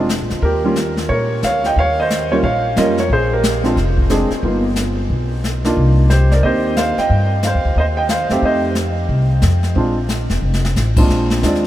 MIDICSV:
0, 0, Header, 1, 5, 480
1, 0, Start_track
1, 0, Tempo, 333148
1, 618, Time_signature, 4, 2, 24, 8
1, 16810, End_track
2, 0, Start_track
2, 0, Title_t, "Grand piano"
2, 0, Program_c, 0, 0
2, 613, Note_on_c, 0, 70, 76
2, 646, Note_on_c, 0, 67, 60
2, 924, Note_on_c, 0, 55, 61
2, 937, Note_on_c, 0, 58, 55
2, 942, Note_on_c, 0, 61, 55
2, 949, Note_on_c, 0, 65, 63
2, 1084, Note_off_c, 0, 55, 0
2, 1090, Note_off_c, 0, 58, 0
2, 1092, Note_off_c, 0, 61, 0
2, 1096, Note_off_c, 0, 65, 0
2, 1342, Note_off_c, 0, 70, 0
2, 1359, Note_off_c, 0, 67, 0
2, 1571, Note_on_c, 0, 73, 84
2, 1604, Note_on_c, 0, 70, 63
2, 2022, Note_off_c, 0, 73, 0
2, 2040, Note_off_c, 0, 70, 0
2, 2081, Note_on_c, 0, 77, 90
2, 2109, Note_on_c, 0, 73, 64
2, 2366, Note_off_c, 0, 73, 0
2, 2379, Note_off_c, 0, 77, 0
2, 2391, Note_on_c, 0, 79, 84
2, 2418, Note_on_c, 0, 75, 65
2, 2559, Note_off_c, 0, 75, 0
2, 2561, Note_off_c, 0, 79, 0
2, 2575, Note_on_c, 0, 77, 98
2, 2594, Note_on_c, 0, 73, 77
2, 2849, Note_off_c, 0, 73, 0
2, 2867, Note_off_c, 0, 77, 0
2, 2877, Note_on_c, 0, 75, 80
2, 2908, Note_on_c, 0, 72, 63
2, 3324, Note_off_c, 0, 72, 0
2, 3334, Note_on_c, 0, 55, 51
2, 3335, Note_on_c, 0, 58, 51
2, 3340, Note_on_c, 0, 73, 81
2, 3344, Note_on_c, 0, 61, 53
2, 3354, Note_off_c, 0, 75, 0
2, 3355, Note_on_c, 0, 65, 62
2, 3361, Note_on_c, 0, 70, 60
2, 3412, Note_off_c, 0, 73, 0
2, 3433, Note_off_c, 0, 70, 0
2, 3490, Note_off_c, 0, 55, 0
2, 3491, Note_off_c, 0, 58, 0
2, 3496, Note_off_c, 0, 61, 0
2, 3501, Note_off_c, 0, 65, 0
2, 3511, Note_on_c, 0, 77, 88
2, 3525, Note_on_c, 0, 73, 68
2, 3961, Note_off_c, 0, 73, 0
2, 3991, Note_on_c, 0, 55, 62
2, 3998, Note_on_c, 0, 58, 56
2, 4002, Note_off_c, 0, 77, 0
2, 4002, Note_on_c, 0, 61, 51
2, 4002, Note_on_c, 0, 75, 82
2, 4007, Note_on_c, 0, 65, 63
2, 4013, Note_on_c, 0, 70, 64
2, 4257, Note_off_c, 0, 55, 0
2, 4261, Note_off_c, 0, 58, 0
2, 4262, Note_off_c, 0, 61, 0
2, 4265, Note_off_c, 0, 65, 0
2, 4272, Note_off_c, 0, 75, 0
2, 4278, Note_off_c, 0, 70, 0
2, 4321, Note_on_c, 0, 73, 74
2, 4332, Note_on_c, 0, 70, 55
2, 4471, Note_off_c, 0, 73, 0
2, 4477, Note_off_c, 0, 70, 0
2, 4506, Note_on_c, 0, 72, 80
2, 4514, Note_on_c, 0, 68, 61
2, 4766, Note_off_c, 0, 72, 0
2, 4770, Note_off_c, 0, 68, 0
2, 4802, Note_on_c, 0, 67, 52
2, 4804, Note_on_c, 0, 70, 79
2, 5232, Note_off_c, 0, 67, 0
2, 5232, Note_off_c, 0, 70, 0
2, 5240, Note_on_c, 0, 56, 56
2, 5252, Note_on_c, 0, 60, 51
2, 5255, Note_on_c, 0, 62, 48
2, 5265, Note_on_c, 0, 65, 66
2, 5405, Note_off_c, 0, 56, 0
2, 5411, Note_off_c, 0, 60, 0
2, 5412, Note_off_c, 0, 62, 0
2, 5417, Note_off_c, 0, 65, 0
2, 5908, Note_on_c, 0, 56, 58
2, 5915, Note_on_c, 0, 60, 56
2, 5920, Note_on_c, 0, 62, 56
2, 5926, Note_on_c, 0, 68, 68
2, 6177, Note_off_c, 0, 56, 0
2, 6180, Note_off_c, 0, 60, 0
2, 6183, Note_off_c, 0, 62, 0
2, 6186, Note_off_c, 0, 68, 0
2, 6395, Note_on_c, 0, 59, 38
2, 6397, Note_on_c, 0, 58, 45
2, 6403, Note_on_c, 0, 63, 41
2, 6410, Note_on_c, 0, 65, 47
2, 6660, Note_off_c, 0, 59, 0
2, 6661, Note_off_c, 0, 58, 0
2, 6664, Note_off_c, 0, 63, 0
2, 6668, Note_off_c, 0, 65, 0
2, 8136, Note_on_c, 0, 58, 60
2, 8142, Note_on_c, 0, 62, 62
2, 8147, Note_on_c, 0, 63, 56
2, 8155, Note_on_c, 0, 65, 68
2, 8756, Note_off_c, 0, 58, 0
2, 8759, Note_off_c, 0, 62, 0
2, 8761, Note_off_c, 0, 63, 0
2, 8765, Note_off_c, 0, 65, 0
2, 8787, Note_on_c, 0, 72, 66
2, 8822, Note_on_c, 0, 67, 54
2, 9084, Note_off_c, 0, 67, 0
2, 9096, Note_off_c, 0, 72, 0
2, 9101, Note_on_c, 0, 74, 73
2, 9127, Note_on_c, 0, 70, 59
2, 9266, Note_on_c, 0, 75, 86
2, 9276, Note_off_c, 0, 70, 0
2, 9277, Note_on_c, 0, 58, 59
2, 9280, Note_off_c, 0, 74, 0
2, 9282, Note_on_c, 0, 60, 55
2, 9289, Note_on_c, 0, 63, 51
2, 9297, Note_on_c, 0, 67, 66
2, 9302, Note_on_c, 0, 72, 65
2, 9732, Note_off_c, 0, 72, 0
2, 9756, Note_on_c, 0, 77, 87
2, 9761, Note_off_c, 0, 75, 0
2, 9783, Note_on_c, 0, 72, 67
2, 9992, Note_off_c, 0, 58, 0
2, 9994, Note_off_c, 0, 60, 0
2, 9998, Note_off_c, 0, 63, 0
2, 10002, Note_off_c, 0, 67, 0
2, 10045, Note_off_c, 0, 72, 0
2, 10060, Note_off_c, 0, 77, 0
2, 10067, Note_on_c, 0, 79, 88
2, 10093, Note_on_c, 0, 75, 69
2, 10504, Note_off_c, 0, 79, 0
2, 10518, Note_off_c, 0, 75, 0
2, 10730, Note_on_c, 0, 77, 77
2, 10760, Note_on_c, 0, 72, 62
2, 11182, Note_off_c, 0, 72, 0
2, 11208, Note_on_c, 0, 75, 83
2, 11212, Note_off_c, 0, 77, 0
2, 11236, Note_on_c, 0, 72, 66
2, 11280, Note_off_c, 0, 75, 0
2, 11308, Note_off_c, 0, 72, 0
2, 11485, Note_on_c, 0, 79, 86
2, 11506, Note_on_c, 0, 75, 68
2, 11557, Note_off_c, 0, 79, 0
2, 11578, Note_off_c, 0, 75, 0
2, 11674, Note_on_c, 0, 77, 82
2, 11694, Note_on_c, 0, 72, 61
2, 11969, Note_on_c, 0, 57, 59
2, 11983, Note_on_c, 0, 60, 55
2, 11992, Note_on_c, 0, 63, 56
2, 11992, Note_on_c, 0, 67, 68
2, 12127, Note_off_c, 0, 72, 0
2, 12164, Note_off_c, 0, 77, 0
2, 12176, Note_on_c, 0, 75, 76
2, 12183, Note_on_c, 0, 72, 59
2, 12591, Note_off_c, 0, 57, 0
2, 12598, Note_off_c, 0, 60, 0
2, 12602, Note_off_c, 0, 63, 0
2, 12603, Note_off_c, 0, 67, 0
2, 12608, Note_off_c, 0, 75, 0
2, 12611, Note_off_c, 0, 72, 0
2, 14060, Note_on_c, 0, 56, 52
2, 14061, Note_on_c, 0, 60, 52
2, 14074, Note_on_c, 0, 62, 52
2, 14085, Note_on_c, 0, 65, 57
2, 14331, Note_off_c, 0, 56, 0
2, 14331, Note_off_c, 0, 60, 0
2, 14338, Note_off_c, 0, 62, 0
2, 14343, Note_off_c, 0, 65, 0
2, 15813, Note_on_c, 0, 46, 59
2, 15814, Note_on_c, 0, 60, 54
2, 15820, Note_on_c, 0, 56, 55
2, 15825, Note_on_c, 0, 62, 54
2, 15827, Note_on_c, 0, 65, 64
2, 16430, Note_off_c, 0, 46, 0
2, 16431, Note_off_c, 0, 60, 0
2, 16434, Note_off_c, 0, 56, 0
2, 16437, Note_off_c, 0, 62, 0
2, 16438, Note_off_c, 0, 65, 0
2, 16473, Note_on_c, 0, 56, 55
2, 16483, Note_on_c, 0, 60, 51
2, 16485, Note_on_c, 0, 62, 49
2, 16492, Note_on_c, 0, 65, 61
2, 16517, Note_on_c, 0, 74, 69
2, 16810, Note_off_c, 0, 56, 0
2, 16810, Note_off_c, 0, 60, 0
2, 16810, Note_off_c, 0, 62, 0
2, 16810, Note_off_c, 0, 65, 0
2, 16810, Note_off_c, 0, 74, 0
2, 16810, End_track
3, 0, Start_track
3, 0, Title_t, "Upright bass"
3, 0, Program_c, 1, 32
3, 0, Note_on_c, 1, 29, 65
3, 244, Note_off_c, 1, 29, 0
3, 291, Note_on_c, 1, 34, 54
3, 443, Note_off_c, 1, 34, 0
3, 450, Note_on_c, 1, 38, 62
3, 596, Note_off_c, 1, 38, 0
3, 605, Note_on_c, 1, 39, 77
3, 1525, Note_off_c, 1, 39, 0
3, 1573, Note_on_c, 1, 46, 71
3, 2023, Note_off_c, 1, 46, 0
3, 2062, Note_on_c, 1, 38, 65
3, 2509, Note_off_c, 1, 38, 0
3, 2539, Note_on_c, 1, 39, 79
3, 3453, Note_off_c, 1, 39, 0
3, 3505, Note_on_c, 1, 34, 69
3, 3951, Note_off_c, 1, 34, 0
3, 3983, Note_on_c, 1, 41, 67
3, 4430, Note_off_c, 1, 41, 0
3, 4462, Note_on_c, 1, 34, 77
3, 5376, Note_off_c, 1, 34, 0
3, 5426, Note_on_c, 1, 29, 72
3, 6152, Note_off_c, 1, 29, 0
3, 6381, Note_on_c, 1, 31, 79
3, 7296, Note_off_c, 1, 31, 0
3, 7349, Note_on_c, 1, 35, 67
3, 8260, Note_off_c, 1, 35, 0
3, 8310, Note_on_c, 1, 36, 82
3, 9221, Note_off_c, 1, 36, 0
3, 9264, Note_on_c, 1, 39, 69
3, 9991, Note_off_c, 1, 39, 0
3, 10226, Note_on_c, 1, 43, 75
3, 10821, Note_off_c, 1, 43, 0
3, 10872, Note_on_c, 1, 39, 53
3, 11011, Note_off_c, 1, 39, 0
3, 11020, Note_on_c, 1, 38, 60
3, 11172, Note_off_c, 1, 38, 0
3, 11179, Note_on_c, 1, 39, 72
3, 11907, Note_off_c, 1, 39, 0
3, 11951, Note_on_c, 1, 42, 68
3, 12126, Note_off_c, 1, 42, 0
3, 12133, Note_on_c, 1, 41, 78
3, 13050, Note_off_c, 1, 41, 0
3, 13097, Note_on_c, 1, 36, 71
3, 13546, Note_off_c, 1, 36, 0
3, 13577, Note_on_c, 1, 41, 76
3, 14026, Note_off_c, 1, 41, 0
3, 14055, Note_on_c, 1, 34, 76
3, 14783, Note_off_c, 1, 34, 0
3, 14837, Note_on_c, 1, 28, 63
3, 15007, Note_off_c, 1, 28, 0
3, 15015, Note_on_c, 1, 29, 66
3, 15464, Note_off_c, 1, 29, 0
3, 15498, Note_on_c, 1, 33, 72
3, 15945, Note_off_c, 1, 33, 0
3, 15977, Note_on_c, 1, 34, 71
3, 16444, Note_off_c, 1, 34, 0
3, 16466, Note_on_c, 1, 39, 78
3, 16810, Note_off_c, 1, 39, 0
3, 16810, End_track
4, 0, Start_track
4, 0, Title_t, "Muted upright bass strokes"
4, 6204, Note_on_c, 9, 29, 38
4, 6348, Note_off_c, 9, 29, 0
4, 10053, Note_on_c, 9, 29, 39
4, 10197, Note_off_c, 9, 29, 0
4, 16810, End_track
5, 0, Start_track
5, 0, Title_t, "Drums"
5, 133, Note_on_c, 9, 44, 46
5, 134, Note_on_c, 9, 38, 51
5, 277, Note_off_c, 9, 44, 0
5, 278, Note_off_c, 9, 38, 0
5, 432, Note_on_c, 9, 38, 33
5, 576, Note_off_c, 9, 38, 0
5, 607, Note_on_c, 9, 25, 44
5, 609, Note_on_c, 9, 36, 31
5, 753, Note_off_c, 9, 36, 0
5, 1092, Note_on_c, 9, 44, 51
5, 1094, Note_on_c, 9, 38, 57
5, 1236, Note_off_c, 9, 44, 0
5, 1238, Note_off_c, 9, 38, 0
5, 1399, Note_on_c, 9, 38, 37
5, 1543, Note_off_c, 9, 38, 0
5, 1578, Note_on_c, 9, 36, 31
5, 1583, Note_off_c, 9, 25, 0
5, 1583, Note_on_c, 9, 25, 41
5, 1722, Note_off_c, 9, 36, 0
5, 2056, Note_on_c, 9, 44, 45
5, 2058, Note_on_c, 9, 38, 49
5, 2200, Note_off_c, 9, 44, 0
5, 2202, Note_off_c, 9, 38, 0
5, 2364, Note_on_c, 9, 38, 35
5, 2508, Note_off_c, 9, 38, 0
5, 2541, Note_on_c, 9, 36, 31
5, 2542, Note_off_c, 9, 25, 0
5, 2542, Note_on_c, 9, 25, 38
5, 2685, Note_off_c, 9, 36, 0
5, 3031, Note_on_c, 9, 44, 58
5, 3032, Note_on_c, 9, 38, 60
5, 3175, Note_off_c, 9, 44, 0
5, 3176, Note_off_c, 9, 38, 0
5, 3503, Note_on_c, 9, 36, 30
5, 3504, Note_off_c, 9, 25, 0
5, 3504, Note_on_c, 9, 25, 40
5, 3647, Note_off_c, 9, 36, 0
5, 3983, Note_on_c, 9, 44, 49
5, 3985, Note_on_c, 9, 38, 55
5, 4127, Note_off_c, 9, 44, 0
5, 4129, Note_off_c, 9, 38, 0
5, 4286, Note_on_c, 9, 38, 34
5, 4430, Note_off_c, 9, 38, 0
5, 4464, Note_on_c, 9, 36, 30
5, 4468, Note_off_c, 9, 25, 0
5, 4468, Note_on_c, 9, 25, 39
5, 4608, Note_off_c, 9, 36, 0
5, 4948, Note_on_c, 9, 44, 62
5, 4950, Note_on_c, 9, 38, 57
5, 5093, Note_off_c, 9, 44, 0
5, 5094, Note_off_c, 9, 38, 0
5, 5249, Note_on_c, 9, 38, 38
5, 5393, Note_off_c, 9, 38, 0
5, 5424, Note_on_c, 9, 36, 30
5, 5431, Note_off_c, 9, 25, 0
5, 5431, Note_on_c, 9, 25, 44
5, 5431, Note_on_c, 9, 38, 35
5, 5569, Note_off_c, 9, 36, 0
5, 5575, Note_off_c, 9, 38, 0
5, 5724, Note_on_c, 9, 36, 47
5, 5868, Note_off_c, 9, 36, 0
5, 5903, Note_on_c, 9, 44, 50
5, 5904, Note_on_c, 9, 38, 51
5, 6047, Note_off_c, 9, 44, 0
5, 6048, Note_off_c, 9, 38, 0
5, 6204, Note_on_c, 9, 38, 36
5, 6348, Note_off_c, 9, 38, 0
5, 6382, Note_off_c, 9, 25, 0
5, 6382, Note_on_c, 9, 25, 45
5, 6382, Note_on_c, 9, 36, 31
5, 6526, Note_off_c, 9, 36, 0
5, 6855, Note_on_c, 9, 44, 50
5, 6857, Note_on_c, 9, 38, 59
5, 6999, Note_off_c, 9, 44, 0
5, 7001, Note_off_c, 9, 38, 0
5, 7347, Note_on_c, 9, 36, 30
5, 7351, Note_off_c, 9, 25, 0
5, 7351, Note_on_c, 9, 25, 41
5, 7491, Note_off_c, 9, 36, 0
5, 7838, Note_on_c, 9, 44, 48
5, 7839, Note_on_c, 9, 38, 53
5, 7982, Note_off_c, 9, 44, 0
5, 7983, Note_off_c, 9, 38, 0
5, 8132, Note_on_c, 9, 38, 37
5, 8276, Note_off_c, 9, 38, 0
5, 8311, Note_on_c, 9, 36, 30
5, 8317, Note_off_c, 9, 25, 0
5, 8317, Note_on_c, 9, 25, 46
5, 8455, Note_off_c, 9, 36, 0
5, 8790, Note_on_c, 9, 44, 54
5, 8791, Note_on_c, 9, 38, 61
5, 8934, Note_off_c, 9, 44, 0
5, 8935, Note_off_c, 9, 38, 0
5, 9098, Note_on_c, 9, 38, 38
5, 9242, Note_off_c, 9, 38, 0
5, 9271, Note_on_c, 9, 36, 31
5, 9272, Note_off_c, 9, 25, 0
5, 9272, Note_on_c, 9, 25, 43
5, 9415, Note_off_c, 9, 36, 0
5, 9748, Note_on_c, 9, 44, 51
5, 9749, Note_on_c, 9, 38, 54
5, 9892, Note_off_c, 9, 44, 0
5, 9894, Note_off_c, 9, 38, 0
5, 10054, Note_on_c, 9, 38, 34
5, 10198, Note_off_c, 9, 38, 0
5, 10227, Note_off_c, 9, 25, 0
5, 10227, Note_on_c, 9, 25, 44
5, 10227, Note_on_c, 9, 36, 31
5, 10371, Note_off_c, 9, 36, 0
5, 10702, Note_on_c, 9, 44, 58
5, 10703, Note_on_c, 9, 38, 59
5, 10846, Note_off_c, 9, 44, 0
5, 10847, Note_off_c, 9, 38, 0
5, 11179, Note_off_c, 9, 25, 0
5, 11179, Note_on_c, 9, 25, 40
5, 11181, Note_on_c, 9, 36, 31
5, 11325, Note_off_c, 9, 36, 0
5, 11655, Note_on_c, 9, 44, 51
5, 11656, Note_on_c, 9, 38, 57
5, 11799, Note_off_c, 9, 44, 0
5, 11800, Note_off_c, 9, 38, 0
5, 11954, Note_on_c, 9, 38, 33
5, 12098, Note_off_c, 9, 38, 0
5, 12135, Note_off_c, 9, 25, 0
5, 12135, Note_on_c, 9, 25, 40
5, 12137, Note_on_c, 9, 36, 29
5, 12281, Note_off_c, 9, 36, 0
5, 12609, Note_on_c, 9, 44, 45
5, 12610, Note_on_c, 9, 38, 55
5, 12753, Note_off_c, 9, 44, 0
5, 12755, Note_off_c, 9, 38, 0
5, 13095, Note_off_c, 9, 25, 0
5, 13095, Note_on_c, 9, 25, 50
5, 13095, Note_on_c, 9, 36, 30
5, 13239, Note_off_c, 9, 36, 0
5, 13568, Note_on_c, 9, 44, 46
5, 13570, Note_on_c, 9, 38, 54
5, 13712, Note_off_c, 9, 44, 0
5, 13714, Note_off_c, 9, 38, 0
5, 13874, Note_on_c, 9, 38, 38
5, 14018, Note_off_c, 9, 38, 0
5, 14057, Note_on_c, 9, 36, 31
5, 14061, Note_off_c, 9, 25, 0
5, 14061, Note_on_c, 9, 25, 48
5, 14201, Note_off_c, 9, 36, 0
5, 14534, Note_on_c, 9, 44, 47
5, 14536, Note_on_c, 9, 38, 57
5, 14678, Note_off_c, 9, 44, 0
5, 14680, Note_off_c, 9, 38, 0
5, 14835, Note_on_c, 9, 38, 39
5, 14979, Note_off_c, 9, 38, 0
5, 15180, Note_on_c, 9, 38, 50
5, 15324, Note_off_c, 9, 38, 0
5, 15340, Note_on_c, 9, 38, 65
5, 15484, Note_off_c, 9, 38, 0
5, 15503, Note_on_c, 9, 44, 52
5, 15504, Note_on_c, 9, 38, 47
5, 15647, Note_off_c, 9, 44, 0
5, 15648, Note_off_c, 9, 38, 0
5, 15796, Note_on_c, 9, 49, 67
5, 15801, Note_on_c, 9, 36, 67
5, 15940, Note_off_c, 9, 49, 0
5, 15945, Note_off_c, 9, 36, 0
5, 15982, Note_off_c, 9, 25, 0
5, 15982, Note_on_c, 9, 25, 50
5, 15982, Note_on_c, 9, 36, 21
5, 15982, Note_on_c, 9, 38, 37
5, 16126, Note_off_c, 9, 36, 0
5, 16126, Note_off_c, 9, 38, 0
5, 16284, Note_on_c, 9, 38, 49
5, 16428, Note_off_c, 9, 38, 0
5, 16466, Note_on_c, 9, 36, 21
5, 16467, Note_on_c, 9, 44, 50
5, 16469, Note_on_c, 9, 38, 57
5, 16610, Note_off_c, 9, 36, 0
5, 16612, Note_off_c, 9, 44, 0
5, 16613, Note_off_c, 9, 38, 0
5, 16635, Note_on_c, 9, 38, 26
5, 16779, Note_off_c, 9, 38, 0
5, 16810, Note_off_c, 9, 25, 0
5, 16810, End_track
0, 0, End_of_file